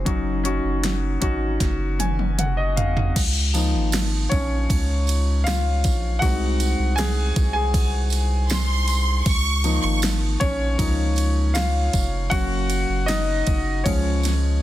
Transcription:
0.05 0.60 F#1 loud
0.05 1.17 F#3 medium
0.05 0.42 C#4 medium
0.05 0.43 D#4 medium
0.05 0.43 F#4 medium
0.05 kick loud
0.05 closed hi-hat medium
0.44 1.17 C#4 medium
0.44 1.18 D#4 medium
0.44 1.18 F#4 medium
0.44 closed hi-hat medium
0.64 1.18 F#1 medium
0.84 snare loud
0.84 closed hi-hat medium
1.21 1.58 G#1 medium
1.21 2.69 C#4 medium
1.21 2.69 D#4 medium
1.21 2.70 F#4 medium
1.21 kick medium
1.21 closed hi-hat medium
1.60 3.12 F#1 loud
1.60 kick medium
1.60 snare medium
1.60 closed hi-hat medium
1.99 2.36 G#5 medium
1.99 closed hi-hat medium
1.99 high tom medium
2.19 high tom medium
2.38 2.57 F#5 medium
2.38 closed hi-hat medium
2.38 mid tom medium
2.57 2.76 D#5 medium
2.76 3.13 F5 medium
2.76 closed hi-hat medium
2.76 floor tom medium
2.97 floor tom medium
3.16 3.76 C#2 loud
3.16 kick loud
3.16 crash medium
3.16 ride medium
3.16 tambourine soft
3.54 4.66 F3 medium
3.54 4.66 A#3 soft
3.54 4.66 D#4 medium
3.54 ride medium
3.54 tambourine soft
3.74 4.28 G#1 medium
3.92 snare loud
3.92 ride medium
3.92 tambourine medium
4.29 4.68 A#1 medium
4.29 5.42 C#4 medium
4.29 5.49 C#5 medium
4.29 kick medium
4.29 ride soft
4.29 tambourine soft
4.70 5.86 C#2 loud
4.70 kick medium
4.70 ride medium
5.07 ride medium
5.07 tambourine soft
5.44 6.19 F4 medium
5.44 6.23 F5 medium
5.44 snare loud
5.44 ride medium
5.44 tambourine medium
5.84 6.20 A#1 medium
5.84 kick medium
5.84 ride medium
5.84 tambourine medium
6.19 6.75 C2 loud
6.19 9.21 G#3 medium
6.19 9.22 C4 soft
6.19 9.22 D#4 medium
6.19 6.94 F#4 medium
6.19 6.99 F#5 medium
6.19 kick loud
6.19 ride medium
6.19 tambourine soft
6.60 ride medium
6.60 tambourine soft
6.79 7.32 C2 medium
6.96 7.51 G#4 medium
6.96 7.52 G#5 loud
6.96 snare loud
6.96 ride medium
6.96 tambourine medium
7.36 9.22 C2 medium
7.36 kick loud
7.36 ride medium
7.36 tambourine soft
7.53 8.27 G#4 medium
7.53 8.26 G#5 medium
7.74 kick medium
7.74 ride medium
7.74 tambourine soft
8.10 ride medium
8.10 tambourine soft
8.49 9.22 C6 loud
8.49 snare loud
8.49 ride medium
8.49 tambourine medium
8.88 ride medium
8.88 tambourine medium
9.25 9.79 C#2 medium
9.25 9.81 C#6 loud
9.25 kick loud
9.25 ride medium
9.25 tambourine soft
9.64 10.76 F3 medium
9.64 10.76 A#3 soft
9.64 10.77 D#4 medium
9.64 ride soft
9.64 tambourine soft
9.82 10.37 G#1 medium
9.82 9.99 C#6 medium
10.02 snare loud
10.02 ride medium
10.02 tambourine medium
10.40 10.77 A#1 medium
10.40 11.52 C#4 medium
10.40 11.59 C#5 medium
10.40 kick medium
10.40 ride medium
10.40 tambourine soft
10.78 11.90 C#2 loud
10.78 11.13 F3 soft
10.78 11.13 A#3 soft
10.78 11.13 D#4 medium
10.78 kick medium
10.78 ride medium
10.78 tambourine soft
11.16 ride medium
11.16 tambourine soft
11.54 12.27 F4 medium
11.54 12.33 F5 medium
11.54 snare loud
11.54 ride medium
11.54 tambourine medium
11.93 12.29 F1 medium
11.93 kick medium
11.93 ride medium
11.93 tambourine medium
12.30 12.85 F#1 loud
12.30 12.82 F#3 medium
12.30 12.82 A#3 soft
12.30 12.83 C#4 medium
12.30 13.04 F#4 medium
12.30 13.10 F#5 loud
12.30 kick loud
12.30 ride medium
12.30 tambourine soft
12.70 ride medium
12.70 tambourine soft
12.89 13.43 F#1 medium
13.06 13.82 D#4 medium
13.06 13.87 D#5 medium
13.06 snare loud
13.06 ride medium
13.06 tambourine medium
13.47 13.83 F#1 medium
13.47 kick medium
13.47 ride medium
13.84 14.60 C#2 loud
13.84 14.37 F3 medium
13.84 14.37 G#3 soft
13.84 14.62 C#4 medium
13.84 14.62 C#5 medium
13.84 kick medium
13.84 ride medium
14.23 snare soft
14.23 ride medium
14.23 tambourine soft

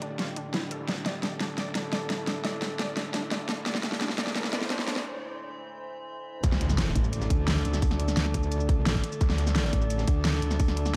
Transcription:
0.00 0.18 A1 loud
0.00 6.39 A2 medium
0.00 6.39 D3 medium
0.00 0.85 D4 medium
0.00 0.13 D4 medium
0.00 0.88 G4 medium
0.00 closed hi-hat medium
0.19 0.36 F4 medium
0.19 snare medium
0.19 closed hi-hat medium
0.36 0.47 D4 medium
0.36 closed hi-hat medium
0.54 0.87 C2 loud
0.54 0.60 E4 loud
0.54 snare medium
0.54 closed hi-hat medium
0.71 0.82 A4 medium
0.71 closed hi-hat medium
0.88 1.39 D2 loud
0.88 1.00 D4 medium
0.88 6.40 E4 medium
0.88 3.65 A4 medium
0.88 snare medium
0.88 closed hi-hat medium
0.88 riser medium
1.06 1.17 D5 loud
1.06 snare medium
1.06 closed hi-hat medium
1.23 1.30 D4 medium
1.23 snare medium
1.23 closed hi-hat medium
1.40 1.74 A1 loud
1.40 1.57 D4 loud
1.40 snare medium
1.40 closed hi-hat medium
1.58 1.74 D5 loud
1.58 snare medium
1.58 closed hi-hat medium
1.75 2.61 A1 loud
1.75 1.86 D4 medium
1.75 snare medium
1.75 closed hi-hat medium
1.93 2.04 D5 loud
1.93 snare medium
1.93 closed hi-hat medium
2.10 2.16 D4 medium
2.10 snare medium
2.10 closed hi-hat medium
2.27 2.44 D4 loud
2.27 snare medium
2.27 closed hi-hat medium
2.45 2.61 D5 loud
2.45 snare medium
2.45 closed hi-hat medium
2.62 2.95 A1 loud
2.62 2.73 D4 medium
2.62 snare medium
2.62 closed hi-hat medium
2.79 2.90 D5 loud
2.79 snare medium
2.79 closed hi-hat medium
2.97 3.65 D2 loud
2.97 3.03 D4 medium
2.97 snare medium
2.97 closed hi-hat medium
3.14 3.30 D4 loud
3.14 snare medium
3.14 closed hi-hat medium
3.31 3.48 D5 loud
3.31 snare medium
3.31 closed hi-hat medium
3.49 3.60 D4 medium
3.49 snare medium
3.49 closed hi-hat medium
3.66 4.17 D2 loud
3.66 6.42 C5 medium
3.66 3.77 D5 loud
3.66 snare medium
3.66 closed hi-hat medium
3.75 snare medium
3.83 3.90 D4 medium
3.83 snare medium
3.83 closed hi-hat loud
3.92 snare medium
4.01 4.17 D4 loud
4.01 snare loud
4.01 closed hi-hat medium
4.09 snare medium
4.18 4.34 D5 loud
4.18 snare loud
4.18 closed hi-hat loud
4.27 snare medium
4.35 4.46 D4 medium
4.35 snare medium
4.35 closed hi-hat medium
4.44 snare medium
4.53 5.05 A1 loud
4.53 4.64 D5 loud
4.53 snare loud
4.53 closed hi-hat loud
4.61 snare medium
4.70 4.77 D4 medium
4.70 snare loud
4.70 closed hi-hat medium
4.79 snare medium
4.87 5.04 D4 loud
4.87 snare loud
4.87 closed hi-hat loud
4.96 snare medium
6.44 6.94 D2 loud
6.44 10.96 D3 medium
6.44 10.96 A3 medium
6.44 10.96 A4 medium
6.44 10.96 D5 medium
6.44 kick loud
6.44 closed hi-hat medium
6.44 impact medium
6.44 shaker medium
6.52 snare soft
6.52 snare medium
6.61 snare soft
6.61 closed hi-hat loud
6.61 closed hi-hat medium
6.70 snare soft
6.70 shaker medium
6.78 snare loud
6.78 closed hi-hat medium
6.78 shaker soft
6.87 snare medium
6.96 7.29 A1 loud
6.96 kick medium
6.96 closed hi-hat loud
6.96 closed hi-hat medium
7.04 shaker soft
7.13 closed hi-hat medium
7.13 shaker soft
7.22 snare medium
7.22 shaker soft
7.30 7.64 D2 loud
7.30 kick loud
7.30 closed hi-hat medium
7.30 closed hi-hat loud
7.48 snare loud
7.48 closed hi-hat medium
7.48 shaker soft
7.56 shaker soft
7.65 8.16 D2 loud
7.65 closed hi-hat medium
7.74 snare soft
7.74 shaker medium
7.82 kick loud
7.82 closed hi-hat medium
7.82 open hi-hat medium
7.82 shaker soft
7.91 snare medium
7.91 closed hi-hat soft
8.00 closed hi-hat medium
8.08 snare soft
8.08 shaker medium
8.17 9.02 D2 loud
8.17 snare loud
8.17 closed hi-hat medium
8.17 shaker soft
8.26 snare soft
8.34 kick medium
8.34 closed hi-hat loud
8.34 closed hi-hat medium
8.43 shaker soft
8.52 closed hi-hat medium
8.52 shaker soft
8.60 shaker soft
8.69 kick loud
8.69 closed hi-hat loud
8.69 closed hi-hat medium
8.86 snare loud
8.86 closed hi-hat medium
8.86 shaker soft
8.95 kick medium
8.95 shaker soft
9.04 closed hi-hat loud
9.04 closed hi-hat medium
9.12 shaker medium
9.21 9.72 D2 loud
9.21 kick loud
9.21 closed hi-hat medium
9.21 shaker soft
9.30 snare soft
9.38 snare soft
9.38 closed hi-hat medium
9.47 snare medium
9.47 shaker medium
9.56 snare loud
9.56 closed hi-hat medium
9.56 shaker soft
9.64 snare medium
9.73 10.06 A1 loud
9.73 kick medium
9.73 closed hi-hat loud
9.73 closed hi-hat medium
9.82 shaker soft
9.90 closed hi-hat medium
9.90 shaker soft
9.99 snare medium
9.99 shaker soft
10.08 10.41 D2 loud
10.08 kick loud
10.08 closed hi-hat loud
10.08 closed hi-hat medium
10.25 snare loud
10.25 closed hi-hat medium
10.25 shaker soft
10.34 shaker soft
10.42 10.93 D2 loud
10.42 closed hi-hat medium
10.51 snare soft
10.51 shaker medium
10.60 kick loud
10.60 closed hi-hat medium
10.60 open hi-hat medium
10.60 shaker soft
10.68 snare soft
10.68 closed hi-hat soft
10.77 closed hi-hat medium
10.86 snare soft
10.86 shaker medium

